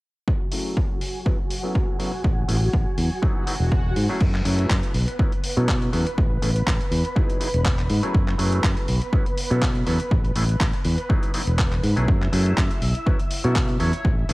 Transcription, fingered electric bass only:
0, 0, Header, 1, 2, 480
1, 0, Start_track
1, 0, Tempo, 491803
1, 269, Time_signature, 4, 2, 24, 8
1, 13986, End_track
2, 0, Start_track
2, 0, Title_t, "Fingered electric bass"
2, 0, Program_c, 0, 33
2, 2188, Note_on_c, 0, 33, 93
2, 2380, Note_off_c, 0, 33, 0
2, 2425, Note_on_c, 0, 33, 77
2, 2618, Note_off_c, 0, 33, 0
2, 2669, Note_on_c, 0, 33, 99
2, 2770, Note_off_c, 0, 33, 0
2, 2906, Note_on_c, 0, 40, 78
2, 3009, Note_off_c, 0, 40, 0
2, 3514, Note_on_c, 0, 28, 84
2, 3828, Note_off_c, 0, 28, 0
2, 3866, Note_on_c, 0, 44, 79
2, 3969, Note_off_c, 0, 44, 0
2, 4107, Note_on_c, 0, 42, 97
2, 4299, Note_off_c, 0, 42, 0
2, 4345, Note_on_c, 0, 42, 81
2, 4538, Note_off_c, 0, 42, 0
2, 4587, Note_on_c, 0, 42, 100
2, 4689, Note_off_c, 0, 42, 0
2, 4825, Note_on_c, 0, 35, 81
2, 4928, Note_off_c, 0, 35, 0
2, 5438, Note_on_c, 0, 47, 82
2, 5749, Note_off_c, 0, 47, 0
2, 5788, Note_on_c, 0, 40, 76
2, 5890, Note_off_c, 0, 40, 0
2, 6029, Note_on_c, 0, 33, 99
2, 6220, Note_off_c, 0, 33, 0
2, 6267, Note_on_c, 0, 33, 81
2, 6459, Note_off_c, 0, 33, 0
2, 6508, Note_on_c, 0, 33, 101
2, 6610, Note_off_c, 0, 33, 0
2, 6747, Note_on_c, 0, 40, 80
2, 6849, Note_off_c, 0, 40, 0
2, 7360, Note_on_c, 0, 28, 81
2, 7671, Note_off_c, 0, 28, 0
2, 7710, Note_on_c, 0, 44, 77
2, 7811, Note_off_c, 0, 44, 0
2, 7950, Note_on_c, 0, 42, 98
2, 8141, Note_off_c, 0, 42, 0
2, 8191, Note_on_c, 0, 42, 81
2, 8381, Note_off_c, 0, 42, 0
2, 8430, Note_on_c, 0, 42, 103
2, 8531, Note_off_c, 0, 42, 0
2, 8672, Note_on_c, 0, 35, 82
2, 8772, Note_off_c, 0, 35, 0
2, 9283, Note_on_c, 0, 47, 85
2, 9592, Note_off_c, 0, 47, 0
2, 9631, Note_on_c, 0, 40, 77
2, 9732, Note_off_c, 0, 40, 0
2, 9871, Note_on_c, 0, 33, 99
2, 10061, Note_off_c, 0, 33, 0
2, 10110, Note_on_c, 0, 33, 79
2, 10301, Note_off_c, 0, 33, 0
2, 10351, Note_on_c, 0, 33, 98
2, 10451, Note_off_c, 0, 33, 0
2, 10590, Note_on_c, 0, 40, 84
2, 10691, Note_off_c, 0, 40, 0
2, 11198, Note_on_c, 0, 28, 81
2, 11509, Note_off_c, 0, 28, 0
2, 11549, Note_on_c, 0, 44, 82
2, 11650, Note_off_c, 0, 44, 0
2, 11680, Note_on_c, 0, 35, 77
2, 11765, Note_off_c, 0, 35, 0
2, 11790, Note_on_c, 0, 42, 95
2, 11981, Note_off_c, 0, 42, 0
2, 12030, Note_on_c, 0, 42, 79
2, 12221, Note_off_c, 0, 42, 0
2, 12271, Note_on_c, 0, 42, 99
2, 12371, Note_off_c, 0, 42, 0
2, 12512, Note_on_c, 0, 35, 80
2, 12612, Note_off_c, 0, 35, 0
2, 13123, Note_on_c, 0, 47, 85
2, 13432, Note_off_c, 0, 47, 0
2, 13469, Note_on_c, 0, 40, 79
2, 13571, Note_off_c, 0, 40, 0
2, 13710, Note_on_c, 0, 33, 99
2, 13901, Note_off_c, 0, 33, 0
2, 13948, Note_on_c, 0, 33, 82
2, 13986, Note_off_c, 0, 33, 0
2, 13986, End_track
0, 0, End_of_file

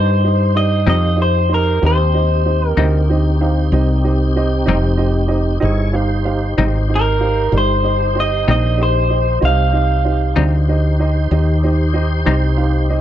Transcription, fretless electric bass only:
0, 0, Header, 1, 2, 480
1, 0, Start_track
1, 0, Key_signature, -3, "minor"
1, 0, Tempo, 632244
1, 1392, Time_signature, 12, 3, 24, 8
1, 9876, End_track
2, 0, Start_track
2, 0, Title_t, "Fretless electric bass"
2, 0, Program_c, 0, 35
2, 0, Note_on_c, 0, 43, 74
2, 646, Note_off_c, 0, 43, 0
2, 661, Note_on_c, 0, 41, 85
2, 1365, Note_off_c, 0, 41, 0
2, 1386, Note_on_c, 0, 39, 70
2, 2088, Note_off_c, 0, 39, 0
2, 2103, Note_on_c, 0, 38, 72
2, 2806, Note_off_c, 0, 38, 0
2, 2824, Note_on_c, 0, 36, 72
2, 3527, Note_off_c, 0, 36, 0
2, 3547, Note_on_c, 0, 29, 81
2, 4248, Note_off_c, 0, 29, 0
2, 4269, Note_on_c, 0, 31, 73
2, 4969, Note_off_c, 0, 31, 0
2, 4993, Note_on_c, 0, 32, 73
2, 5691, Note_off_c, 0, 32, 0
2, 5711, Note_on_c, 0, 31, 75
2, 6410, Note_off_c, 0, 31, 0
2, 6437, Note_on_c, 0, 34, 81
2, 7133, Note_off_c, 0, 34, 0
2, 7154, Note_on_c, 0, 36, 75
2, 7851, Note_off_c, 0, 36, 0
2, 7874, Note_on_c, 0, 38, 79
2, 8571, Note_off_c, 0, 38, 0
2, 8587, Note_on_c, 0, 39, 69
2, 9288, Note_off_c, 0, 39, 0
2, 9313, Note_on_c, 0, 36, 74
2, 9876, Note_off_c, 0, 36, 0
2, 9876, End_track
0, 0, End_of_file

